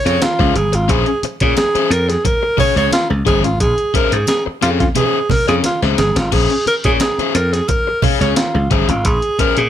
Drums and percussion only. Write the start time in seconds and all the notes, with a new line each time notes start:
0.06 closed hi-hat
0.22 snare, closed hi-hat, high conga
0.39 kick, snare, high conga
0.56 closed hi-hat, high conga
0.73 closed hi-hat
0.89 kick, closed hi-hat
1.06 closed hi-hat
1.23 closed hi-hat, muted conga
1.40 kick, closed hi-hat
1.57 snare, closed hi-hat, high conga
1.75 closed hi-hat
1.91 closed hi-hat
2.10 snare, closed hi-hat
2.25 kick, closed hi-hat, muted conga
2.58 kick, open hi-hat, muted conga, low conga
2.77 snare, closed hi-hat
2.91 snare, closed hi-hat, high conga
3.10 high conga
3.26 kick, closed hi-hat, high conga
3.44 closed hi-hat
3.60 kick, closed hi-hat
3.78 closed hi-hat
3.94 kick, closed hi-hat
4.12 closed hi-hat
4.27 snare, closed hi-hat, high conga
4.62 closed hi-hat
4.80 kick, snare, closed hi-hat
4.95 closed hi-hat, muted conga, low conga
5.30 kick, snare, open hi-hat, muted conga, low conga
5.48 closed hi-hat
5.64 snare, closed hi-hat, high conga
5.83 snare, high conga
5.98 snare, closed hi-hat, high conga
6.16 snare, closed hi-hat
6.32 kick, crash
6.50 closed hi-hat
6.66 closed hi-hat, muted conga
6.84 kick, closed hi-hat
7.00 snare, closed hi-hat, high conga
7.19 closed hi-hat
7.35 closed hi-hat
7.54 snare, closed hi-hat
7.68 kick, closed hi-hat, muted conga
8.02 kick, open hi-hat, muted conga, low conga
8.21 snare, closed hi-hat
8.36 snare, closed hi-hat, high conga
8.55 high conga
8.71 kick, closed hi-hat, high conga
8.89 closed hi-hat
9.05 kick, closed hi-hat
9.22 closed hi-hat
9.39 kick, closed hi-hat, muted conga
9.57 closed hi-hat